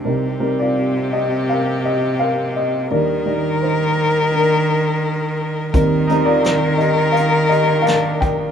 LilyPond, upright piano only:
<<
  \new Staff \with { instrumentName = "Upright piano" } { \time 4/4 \key c \dorian \tempo 4 = 85 << { r8. <f' d''>8. <g' ees''>8 <bes' f''>8 <g' ees''>8 <bes' f''>8 <g' ees''>8 | <g' d''>4 <ees' c''>4 <d' bes'>4. r8 | r8. <f' d''>8. <g' ees''>8 <bes' f''>8 <g' ees''>8 <bes' f''>8 <bes' g''>8 | } \\ { <g c' ees' bes'>8 <g c' ees' bes'>4. r2 | <g d' ees' bes'>8 <g ees' g' d''>4. r2 | <g c' ees' bes'>8 <g c' ees' bes'>4. r2 | } >> }
  \new Staff \with { instrumentName = "Upright piano" } { \clef bass \time 4/4 \key c \dorian <c, c>1 | <ees, ees>1 | <ees, ees>1 | }
>>